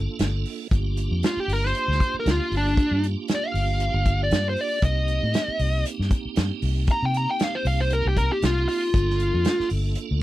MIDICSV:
0, 0, Header, 1, 6, 480
1, 0, Start_track
1, 0, Key_signature, -2, "minor"
1, 0, Tempo, 513699
1, 673, Time_signature, 4, 2, 24, 8
1, 9557, End_track
2, 0, Start_track
2, 0, Title_t, "Lead electric guitar"
2, 0, Program_c, 0, 29
2, 1175, Note_on_c, 0, 65, 92
2, 1308, Note_off_c, 0, 65, 0
2, 1308, Note_on_c, 0, 67, 80
2, 1428, Note_off_c, 0, 67, 0
2, 1428, Note_on_c, 0, 70, 97
2, 1559, Note_off_c, 0, 70, 0
2, 1559, Note_on_c, 0, 72, 77
2, 2008, Note_off_c, 0, 72, 0
2, 2054, Note_on_c, 0, 70, 78
2, 2135, Note_off_c, 0, 70, 0
2, 2157, Note_on_c, 0, 65, 83
2, 2369, Note_off_c, 0, 65, 0
2, 2403, Note_on_c, 0, 62, 92
2, 2845, Note_off_c, 0, 62, 0
2, 3128, Note_on_c, 0, 74, 86
2, 3244, Note_off_c, 0, 74, 0
2, 3244, Note_on_c, 0, 77, 80
2, 3924, Note_off_c, 0, 77, 0
2, 3958, Note_on_c, 0, 74, 81
2, 4175, Note_off_c, 0, 74, 0
2, 4198, Note_on_c, 0, 72, 84
2, 4306, Note_off_c, 0, 72, 0
2, 4306, Note_on_c, 0, 74, 76
2, 4524, Note_off_c, 0, 74, 0
2, 4533, Note_on_c, 0, 75, 92
2, 5455, Note_off_c, 0, 75, 0
2, 6461, Note_on_c, 0, 82, 107
2, 6576, Note_off_c, 0, 82, 0
2, 6591, Note_on_c, 0, 79, 83
2, 6684, Note_off_c, 0, 79, 0
2, 6702, Note_on_c, 0, 82, 92
2, 6817, Note_off_c, 0, 82, 0
2, 6827, Note_on_c, 0, 79, 86
2, 6949, Note_off_c, 0, 79, 0
2, 6949, Note_on_c, 0, 77, 90
2, 7056, Note_on_c, 0, 72, 88
2, 7060, Note_off_c, 0, 77, 0
2, 7156, Note_off_c, 0, 72, 0
2, 7166, Note_on_c, 0, 77, 94
2, 7288, Note_off_c, 0, 77, 0
2, 7293, Note_on_c, 0, 72, 93
2, 7395, Note_off_c, 0, 72, 0
2, 7411, Note_on_c, 0, 70, 98
2, 7531, Note_off_c, 0, 70, 0
2, 7554, Note_on_c, 0, 67, 89
2, 7639, Note_off_c, 0, 67, 0
2, 7639, Note_on_c, 0, 70, 83
2, 7765, Note_off_c, 0, 70, 0
2, 7780, Note_on_c, 0, 67, 90
2, 7878, Note_off_c, 0, 67, 0
2, 7899, Note_on_c, 0, 65, 84
2, 8105, Note_off_c, 0, 65, 0
2, 8116, Note_on_c, 0, 65, 105
2, 9046, Note_off_c, 0, 65, 0
2, 9557, End_track
3, 0, Start_track
3, 0, Title_t, "Tonewheel organ"
3, 0, Program_c, 1, 16
3, 0, Note_on_c, 1, 58, 68
3, 0, Note_on_c, 1, 62, 62
3, 0, Note_on_c, 1, 65, 66
3, 0, Note_on_c, 1, 69, 77
3, 630, Note_off_c, 1, 62, 0
3, 631, Note_off_c, 1, 65, 0
3, 632, Note_off_c, 1, 58, 0
3, 632, Note_off_c, 1, 69, 0
3, 673, Note_on_c, 1, 62, 66
3, 674, Note_on_c, 1, 58, 69
3, 675, Note_on_c, 1, 65, 64
3, 678, Note_on_c, 1, 67, 82
3, 4477, Note_off_c, 1, 58, 0
3, 4477, Note_off_c, 1, 62, 0
3, 4478, Note_off_c, 1, 65, 0
3, 4479, Note_off_c, 1, 67, 0
3, 4516, Note_on_c, 1, 58, 63
3, 4517, Note_on_c, 1, 60, 51
3, 4519, Note_on_c, 1, 63, 55
3, 4522, Note_on_c, 1, 67, 66
3, 8318, Note_off_c, 1, 58, 0
3, 8318, Note_off_c, 1, 60, 0
3, 8319, Note_off_c, 1, 63, 0
3, 8321, Note_off_c, 1, 67, 0
3, 8357, Note_on_c, 1, 58, 63
3, 8360, Note_on_c, 1, 62, 62
3, 8362, Note_on_c, 1, 65, 57
3, 8364, Note_on_c, 1, 69, 73
3, 9557, Note_off_c, 1, 58, 0
3, 9557, Note_off_c, 1, 62, 0
3, 9557, Note_off_c, 1, 65, 0
3, 9557, Note_off_c, 1, 69, 0
3, 9557, End_track
4, 0, Start_track
4, 0, Title_t, "Fingered electric bass"
4, 0, Program_c, 2, 33
4, 181, Note_on_c, 2, 31, 83
4, 403, Note_off_c, 2, 31, 0
4, 666, Note_on_c, 2, 31, 93
4, 1005, Note_off_c, 2, 31, 0
4, 1037, Note_on_c, 2, 41, 80
4, 1139, Note_off_c, 2, 41, 0
4, 1382, Note_on_c, 2, 31, 86
4, 1604, Note_off_c, 2, 31, 0
4, 1758, Note_on_c, 2, 38, 83
4, 1859, Note_off_c, 2, 38, 0
4, 2108, Note_on_c, 2, 38, 90
4, 2229, Note_off_c, 2, 38, 0
4, 2351, Note_on_c, 2, 31, 90
4, 2569, Note_off_c, 2, 31, 0
4, 2723, Note_on_c, 2, 43, 89
4, 2941, Note_off_c, 2, 43, 0
4, 3308, Note_on_c, 2, 31, 81
4, 3647, Note_off_c, 2, 31, 0
4, 3680, Note_on_c, 2, 31, 87
4, 4031, Note_on_c, 2, 43, 87
4, 4045, Note_off_c, 2, 31, 0
4, 4249, Note_off_c, 2, 43, 0
4, 4508, Note_on_c, 2, 36, 90
4, 4847, Note_off_c, 2, 36, 0
4, 4887, Note_on_c, 2, 45, 79
4, 4985, Note_off_c, 2, 45, 0
4, 5228, Note_on_c, 2, 36, 87
4, 5448, Note_off_c, 2, 36, 0
4, 5601, Note_on_c, 2, 43, 79
4, 5702, Note_off_c, 2, 43, 0
4, 5954, Note_on_c, 2, 43, 84
4, 6073, Note_off_c, 2, 43, 0
4, 6190, Note_on_c, 2, 36, 92
4, 6409, Note_off_c, 2, 36, 0
4, 6564, Note_on_c, 2, 48, 84
4, 6782, Note_off_c, 2, 48, 0
4, 7148, Note_on_c, 2, 36, 89
4, 7487, Note_off_c, 2, 36, 0
4, 7526, Note_on_c, 2, 36, 86
4, 7743, Note_off_c, 2, 36, 0
4, 7873, Note_on_c, 2, 36, 86
4, 8090, Note_off_c, 2, 36, 0
4, 8352, Note_on_c, 2, 31, 98
4, 8689, Note_off_c, 2, 31, 0
4, 8730, Note_on_c, 2, 41, 90
4, 8826, Note_off_c, 2, 41, 0
4, 9074, Note_on_c, 2, 31, 85
4, 9290, Note_off_c, 2, 31, 0
4, 9446, Note_on_c, 2, 38, 89
4, 9543, Note_off_c, 2, 38, 0
4, 9557, End_track
5, 0, Start_track
5, 0, Title_t, "Muted fingered electric bass strokes"
5, 1278, Note_on_c, 9, 29, 38
5, 1371, Note_off_c, 9, 29, 0
5, 2002, Note_on_c, 9, 29, 36
5, 2095, Note_off_c, 9, 29, 0
5, 5121, Note_on_c, 9, 29, 36
5, 5215, Note_off_c, 9, 29, 0
5, 5842, Note_on_c, 9, 29, 32
5, 5935, Note_off_c, 9, 29, 0
5, 8968, Note_on_c, 9, 29, 37
5, 9061, Note_off_c, 9, 29, 0
5, 9557, End_track
6, 0, Start_track
6, 0, Title_t, "Drums"
6, 178, Note_on_c, 9, 42, 84
6, 192, Note_on_c, 9, 38, 113
6, 271, Note_off_c, 9, 42, 0
6, 285, Note_off_c, 9, 38, 0
6, 424, Note_on_c, 9, 46, 71
6, 517, Note_off_c, 9, 46, 0
6, 665, Note_on_c, 9, 42, 87
6, 667, Note_on_c, 9, 36, 115
6, 758, Note_off_c, 9, 42, 0
6, 760, Note_off_c, 9, 36, 0
6, 907, Note_on_c, 9, 42, 65
6, 1000, Note_off_c, 9, 42, 0
6, 1148, Note_on_c, 9, 42, 78
6, 1162, Note_on_c, 9, 38, 111
6, 1242, Note_off_c, 9, 42, 0
6, 1256, Note_off_c, 9, 38, 0
6, 1394, Note_on_c, 9, 46, 62
6, 1487, Note_off_c, 9, 46, 0
6, 1542, Note_on_c, 9, 38, 36
6, 1632, Note_on_c, 9, 42, 85
6, 1635, Note_off_c, 9, 38, 0
6, 1726, Note_off_c, 9, 42, 0
6, 1789, Note_on_c, 9, 38, 35
6, 1872, Note_on_c, 9, 36, 86
6, 1877, Note_on_c, 9, 42, 58
6, 1883, Note_off_c, 9, 38, 0
6, 1965, Note_off_c, 9, 36, 0
6, 1971, Note_off_c, 9, 42, 0
6, 2112, Note_on_c, 9, 42, 79
6, 2126, Note_on_c, 9, 38, 110
6, 2206, Note_off_c, 9, 42, 0
6, 2220, Note_off_c, 9, 38, 0
6, 2353, Note_on_c, 9, 46, 70
6, 2447, Note_off_c, 9, 46, 0
6, 2592, Note_on_c, 9, 36, 112
6, 2593, Note_on_c, 9, 42, 73
6, 2686, Note_off_c, 9, 36, 0
6, 2686, Note_off_c, 9, 42, 0
6, 2835, Note_on_c, 9, 42, 58
6, 2928, Note_off_c, 9, 42, 0
6, 3065, Note_on_c, 9, 42, 79
6, 3079, Note_on_c, 9, 38, 102
6, 3159, Note_off_c, 9, 42, 0
6, 3173, Note_off_c, 9, 38, 0
6, 3317, Note_on_c, 9, 46, 67
6, 3410, Note_off_c, 9, 46, 0
6, 3549, Note_on_c, 9, 42, 80
6, 3643, Note_off_c, 9, 42, 0
6, 3790, Note_on_c, 9, 42, 62
6, 3791, Note_on_c, 9, 36, 85
6, 3884, Note_off_c, 9, 36, 0
6, 3884, Note_off_c, 9, 42, 0
6, 4028, Note_on_c, 9, 42, 91
6, 4042, Note_on_c, 9, 38, 106
6, 4121, Note_off_c, 9, 42, 0
6, 4135, Note_off_c, 9, 38, 0
6, 4265, Note_on_c, 9, 46, 73
6, 4359, Note_off_c, 9, 46, 0
6, 4503, Note_on_c, 9, 42, 85
6, 4508, Note_on_c, 9, 36, 109
6, 4596, Note_off_c, 9, 42, 0
6, 4602, Note_off_c, 9, 36, 0
6, 4746, Note_on_c, 9, 42, 56
6, 4839, Note_off_c, 9, 42, 0
6, 4986, Note_on_c, 9, 42, 84
6, 5000, Note_on_c, 9, 38, 99
6, 5080, Note_off_c, 9, 42, 0
6, 5094, Note_off_c, 9, 38, 0
6, 5225, Note_on_c, 9, 46, 64
6, 5318, Note_off_c, 9, 46, 0
6, 5470, Note_on_c, 9, 42, 84
6, 5563, Note_off_c, 9, 42, 0
6, 5617, Note_on_c, 9, 38, 35
6, 5706, Note_on_c, 9, 42, 61
6, 5707, Note_on_c, 9, 36, 88
6, 5711, Note_off_c, 9, 38, 0
6, 5800, Note_off_c, 9, 42, 0
6, 5801, Note_off_c, 9, 36, 0
6, 5941, Note_on_c, 9, 42, 80
6, 5955, Note_on_c, 9, 38, 106
6, 6035, Note_off_c, 9, 42, 0
6, 6049, Note_off_c, 9, 38, 0
6, 6186, Note_on_c, 9, 46, 76
6, 6279, Note_off_c, 9, 46, 0
6, 6421, Note_on_c, 9, 42, 76
6, 6428, Note_on_c, 9, 36, 106
6, 6514, Note_off_c, 9, 42, 0
6, 6521, Note_off_c, 9, 36, 0
6, 6673, Note_on_c, 9, 42, 55
6, 6767, Note_off_c, 9, 42, 0
6, 6909, Note_on_c, 9, 42, 80
6, 6923, Note_on_c, 9, 38, 96
6, 7002, Note_off_c, 9, 42, 0
6, 7016, Note_off_c, 9, 38, 0
6, 7150, Note_on_c, 9, 46, 61
6, 7244, Note_off_c, 9, 46, 0
6, 7385, Note_on_c, 9, 42, 79
6, 7478, Note_off_c, 9, 42, 0
6, 7630, Note_on_c, 9, 36, 89
6, 7631, Note_on_c, 9, 42, 64
6, 7724, Note_off_c, 9, 36, 0
6, 7725, Note_off_c, 9, 42, 0
6, 7869, Note_on_c, 9, 42, 85
6, 7883, Note_on_c, 9, 38, 108
6, 7963, Note_off_c, 9, 42, 0
6, 7977, Note_off_c, 9, 38, 0
6, 8112, Note_on_c, 9, 46, 74
6, 8205, Note_off_c, 9, 46, 0
6, 8353, Note_on_c, 9, 36, 102
6, 8354, Note_on_c, 9, 42, 83
6, 8446, Note_off_c, 9, 36, 0
6, 8447, Note_off_c, 9, 42, 0
6, 8503, Note_on_c, 9, 38, 35
6, 8592, Note_on_c, 9, 42, 60
6, 8596, Note_off_c, 9, 38, 0
6, 8685, Note_off_c, 9, 42, 0
6, 8825, Note_on_c, 9, 42, 85
6, 8839, Note_on_c, 9, 38, 103
6, 8919, Note_off_c, 9, 42, 0
6, 8933, Note_off_c, 9, 38, 0
6, 8971, Note_on_c, 9, 38, 35
6, 9060, Note_on_c, 9, 46, 64
6, 9065, Note_off_c, 9, 38, 0
6, 9154, Note_off_c, 9, 46, 0
6, 9299, Note_on_c, 9, 42, 88
6, 9393, Note_off_c, 9, 42, 0
6, 9557, End_track
0, 0, End_of_file